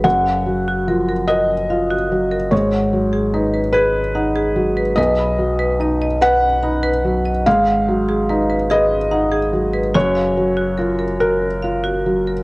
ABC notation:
X:1
M:6/8
L:1/16
Q:3/8=48
K:G#dor
V:1 name="Marimba"
F e z F A A F z e F z A | G f z G B B G z f G z B | B b z B d d B z b B z d | G f z G B B G z f G z B |
F e z F A A F z e F z A |]
V:2 name="Felt piano"
f6 d6 | c6 B6 | d6 f6 | e6 d6 |
c6 A6 |]
V:3 name="Felt piano" clef=bass
F,,2 F,2 E,2 A2 E2 F,2 | G,,2 F,2 D4 D2 F,2 | B,,,2 F,2 D2 B2 D2 F,2 | G,,2 F,2 D2 B2 D2 F,2 |
F,,2 F,2 E4 E2 F,2 |]
V:4 name="Sub bass" clef=bass
F,,,12 | G,,,12 | B,,,12 | G,,,12 |
F,,,12 |]